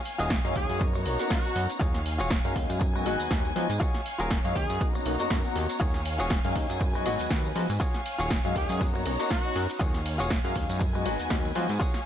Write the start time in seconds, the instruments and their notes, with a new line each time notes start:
Already playing: violin section C#5 F5 G#5
0.05 open hi-hat
0.18 analog synth bass D#1, clean electric guitar F4 F#4 G#4 D#5, closed hi-hat, tambourine, shaker
0.30 kick, snare, tambourine, shaker
0.44 analog synth bass F#2, grand piano F#3 G#3 C#4 D#4 F5, closed hi-hat, tambourine, shaker
0.55 analog synth bass D#2, horn section G#4, muted clean electric guitar stroke, kick, open hi-hat
0.69 analog synth bass F#2, closed hi-hat, tambourine, shaker
0.80 grand piano A#3 B3 C#4 D#4 F#4, violin section D#4 A#5, muted clean electric guitar stroke, kick, tambourine, shaker
0.93 grand piano A#3 B3 C#4 D#4 F#4, muted clean electric guitar stroke, tambourine, shaker
1.05 analog synth bass B1, grand piano A#3 B3 C#4 D#4 F#4, muted clean electric guitar stroke, open hi-hat
1.19 grand piano A#3 B3 C#4 D#4 F#4, closed hi-hat, tambourine, shaker
1.30 horn section F#4, kick, snare, shaker
1.44 grand piano B3 C#4 D#4 F#4, tambourine, shaker
1.56 analog synth bass F#2, open hi-hat
1.70 closed hi-hat, tambourine, shaker
1.80 analog synth bass D#2, clean electric guitar F4 F#4 G#4 C#5, violin section F5 G#5, kick, tambourine, shaker
1.94 snare, closed hi-hat, tambourine, shaker
2.06 open hi-hat
2.18 analog synth bass D#1, clean electric guitar F4 F#4 G#4 C#5, closed hi-hat, tambourine, shaker
2.30 kick, snare, tambourine, shaker
2.44 analog synth bass F#2, grand piano F#3 G#3 C#4 D#4 F5, closed hi-hat, tambourine, shaker
2.55 analog synth bass D#2, muted clean electric guitar stroke, kick, open hi-hat
2.70 analog synth bass F#2, closed hi-hat, tambourine, shaker
2.80 violin section B3, muted clean electric guitar stroke, kick, tambourine, shaker
2.94 grand piano F#3 G#3 B3 D#4 F#4, muted clean electric guitar stroke, tambourine, shaker
3.05 analog synth bass G#1, grand piano F#3 G#3 B3 D#4 F#4, muted clean electric guitar stroke, open hi-hat
3.20 analog synth bass D#2, closed hi-hat, tambourine, shaker
3.31 analog synth bass D#2, grand piano F#3 G#3 B3 D#4 F#4, kick, snare, tambourine, shaker
3.45 tambourine, shaker
3.56 analog synth bass F3, grand piano F#3 G#3 B3 D#4 F#4, open hi-hat
3.70 analog synth bass G#2, closed hi-hat, tambourine, shaker
3.80 clean electric guitar F4 F#4 G#4 C#5, violin section C#5 F5, kick, tambourine, shaker
3.94 snare, closed hi-hat, tambourine, shaker
4.06 open hi-hat
4.19 analog synth bass D#1, clean electric guitar F4 F#4 G#4 A#4, closed hi-hat, tambourine, shaker
4.31 kick, snare, tambourine, shaker
4.44 analog synth bass F#2, grand piano F#3 G#3 C#4 D#4 F5, closed hi-hat, tambourine, shaker
4.55 analog synth bass D#2, horn section G#4, muted clean electric guitar stroke, kick, open hi-hat
4.69 analog synth bass F#2, closed hi-hat, tambourine, shaker
4.80 grand piano A#3 B3 C#4 D#4 F#4, violin section D#4 C#5 A#5, muted clean electric guitar stroke, kick, tambourine, shaker
4.93 analog synth bass B1, grand piano A#3 B3 C#4 D#4 F#4, muted clean electric guitar stroke, tambourine, shaker
5.05 analog synth bass B1, grand piano A#3 B3 C#4 D#4 F#4, muted clean electric guitar stroke, open hi-hat
5.19 analog synth bass F#2, grand piano A#3 B3 C#4 D#4 F#4, closed hi-hat, tambourine, shaker
5.30 analog synth bass F#2, kick, snare, tambourine, shaker
5.44 grand piano B3 C#4 D#4 F#4, tambourine, shaker
5.56 analog synth bass D#2, open hi-hat
5.69 closed hi-hat, tambourine, shaker
5.80 analog synth bass D#2, clean electric guitar F4 F#4 G#4 C#5, violin section F5 G#5, kick, ride, tambourine, shaker
5.94 snare, closed hi-hat, tambourine, shaker
6.06 open hi-hat, ride
6.18 analog synth bass D#1, clean electric guitar F4 F#4 G#4 C#5, closed hi-hat, tambourine, shaker
6.30 kick, snare, ride, tambourine, shaker
6.44 analog synth bass F#2, grand piano F#3 G#3 C#4 D#4 F5, closed hi-hat, tambourine, shaker
6.55 analog synth bass D#2, muted clean electric guitar stroke, kick, open hi-hat, ride
6.70 analog synth bass F#2, closed hi-hat, tambourine, shaker
6.80 violin section B4, muted clean electric guitar stroke, kick, ride, tambourine, shaker
6.93 grand piano F#3 G#3 B3 D#4 F#4, muted clean electric guitar stroke, tambourine, shaker
7.05 analog synth bass G#1, grand piano F#3 G#3 B3 D#4 F#4, muted clean electric guitar stroke, open hi-hat, ride
7.19 analog synth bass D#2, closed hi-hat, tambourine, shaker
7.30 analog synth bass D#2, grand piano F#3 G#3 B3 D#4 F#4, kick, snare, ride, tambourine, shaker
7.44 tambourine, shaker
7.55 analog synth bass F3, grand piano F#3 G#3 B3 D#4 F#4, open hi-hat, ride
7.70 analog synth bass G#2, closed hi-hat, tambourine, shaker
7.80 clean electric guitar F4 F#4 G#4 C#5, violin section C#5 F5 G#5, kick, ride, tambourine, shaker
7.94 snare, closed hi-hat, tambourine, shaker
8.06 open hi-hat, ride
8.19 analog synth bass D#1, clean electric guitar F4 F#4 G#4 C#5, closed hi-hat, tambourine, shaker
8.30 kick, snare, ride, tambourine, shaker
8.44 analog synth bass F#2, grand piano F#3 G#3 C#4 D#4 F5, closed hi-hat, tambourine, shaker
8.55 analog synth bass D#2, horn section G#4, muted clean electric guitar stroke, kick, open hi-hat, ride
8.69 analog synth bass F#2, closed hi-hat, tambourine, shaker
8.80 grand piano A#3 B3 C#4 D#4 F#4, violin section D#4 A#5, muted clean electric guitar stroke, kick, ride, tambourine, shaker
8.94 grand piano A#3 B3 C#4 D#4 F#4, muted clean electric guitar stroke, tambourine, shaker
9.05 analog synth bass B1, grand piano A#3 B3 C#4 D#4 F#4, muted clean electric guitar stroke, open hi-hat, ride
9.19 grand piano A#3 B3 C#4 D#4 F#4, closed hi-hat, tambourine, shaker
9.30 horn section F#4, kick, snare, ride, shaker
9.44 grand piano B3 C#4 D#4 F#4, tambourine, shaker
9.56 analog synth bass F#2, open hi-hat, ride
9.69 closed hi-hat, tambourine, shaker
9.79 analog synth bass D#2, clean electric guitar F4 F#4 G#4 C#5, violin section C#5 F5 G#5, kick, ride, tambourine, shaker
9.94 snare, closed hi-hat, tambourine, shaker
10.06 open hi-hat, ride
10.18 analog synth bass D#1, clean electric guitar F4 F#4 G#4 C#5, closed hi-hat, tambourine, shaker
10.30 kick, snare, ride, shaker
10.44 analog synth bass F#2, grand piano F#3 G#3 C#4 D#4 F5, closed hi-hat, tambourine, shaker
10.54 analog synth bass D#2, muted clean electric guitar stroke, kick, open hi-hat, ride
10.69 analog synth bass F#2, closed hi-hat, tambourine, shaker
10.80 violin section B4, muted clean electric guitar stroke, kick, ride, tambourine, shaker
10.93 grand piano F#3 G#3 B3 D#4 F#4, muted clean electric guitar stroke, tambourine, shaker
11.05 analog synth bass G#1, grand piano F#3 G#3 B3 D#4 F#4, muted clean electric guitar stroke, open hi-hat, ride
11.19 analog synth bass D#2, closed hi-hat, tambourine, shaker
11.30 analog synth bass D#2, grand piano F#3 G#3 B3 D#4 F#4, kick, snare, ride, tambourine, shaker
11.45 tambourine, shaker
11.55 analog synth bass F3, grand piano F#3 G#3 B3 D#4 F#4, open hi-hat, ride
11.69 analog synth bass G#2, closed hi-hat, tambourine, shaker
11.80 clean electric guitar F4 F#4 G#4 C#5, violin section C#5 F5, kick, ride, tambourine, shaker
11.94 snare, closed hi-hat, tambourine, shaker